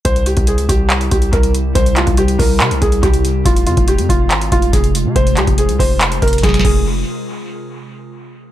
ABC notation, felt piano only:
X:1
M:4/4
L:1/8
Q:1/4=141
K:Fm
V:1 name="Felt piano"
c G A G2 G B z | c F G B2 A G2 | F F G F2 F A z | c G A c2 B A A |
z8 |]